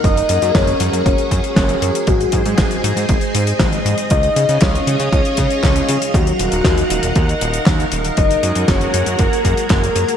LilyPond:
<<
  \new Staff \with { instrumentName = "Soft synth lead" } { \time 4/4 \key ges \lydian \tempo 4 = 118 ees''4 des''4 des''2 | ges'2 r2 | ees''4 des''4 des''2 | ges'2 r2 |
ees''4 des''4 bes'4 bes'4 | }
  \new Staff \with { instrumentName = "String machine" } { \time 4/4 \key ges \lydian <ges' aes' bes'>1 | <aes c'' ees''>1 | <des' aes' f''>1 | <ees' bes' ges''>1 |
<ges' aes'>1 | }
  \new Staff \with { instrumentName = "Analog synth bass" } { \clef bass \time 4/4 \key ges \lydian ges,,16 r16 ges,16 ges,16 ges,,16 r16 ges,16 ges,16 ges,,16 r16 ges,16 r16 ges,,16 r16 ges,16 r16 | aes,,16 r16 aes,16 aes,16 aes,,16 r16 aes,16 aes,16 aes,,16 r16 aes,16 r16 aes,,16 r16 aes,16 r16 | des,16 r16 des16 des16 des,16 r16 des16 des16 des,16 r16 des16 r16 des,16 r16 des16 r16 | ees,16 r16 ees,,16 ees,,16 ees,16 r16 ees,,16 ees,,16 ees,16 r16 ees,,16 r16 ees,16 r16 ees,,16 r16 |
ges,,16 r16 ges,16 ges,16 ges,,16 r16 ges,16 ges,16 ges,,16 r16 ges,16 r16 ges,,16 r16 ges,16 r16 | }
  \new DrumStaff \with { instrumentName = "Drums" } \drummode { \time 4/4 <hh bd>16 hh16 hh16 hh16 <hc hh bd sn>16 hh16 hh16 hh16 <hh bd>16 hh16 <hh bd>16 hh16 <hc hh bd sn>16 hh16 hh16 hh16 | <hh bd>16 hh16 <hh bd>16 hh16 <hc hh bd sn>16 hh16 hh16 hh16 <hh bd>16 hh16 hh16 hh16 <hc hh bd sn>16 hh16 hh16 hh16 | <hh bd>16 hh16 hh16 hh16 <hc hh bd sn>16 hh16 hh16 hh16 <hh bd>16 hh16 <hh bd>16 hh16 <hc hh bd sn>16 hh16 hh16 hh16 | <hh bd>16 hh16 hh16 hh16 <hc hh bd sn>16 hh16 hh16 hh16 <hh bd>16 hh16 hh16 hh16 <hc hh bd sn>16 hh16 hh16 hh16 |
<hh bd>16 hh16 hh16 hh16 <hc hh bd sn>16 hh16 hh16 hh16 <hh bd>16 hh16 <hh bd>16 hh16 <hc hh bd sn>16 hh16 hh16 hh16 | }
>>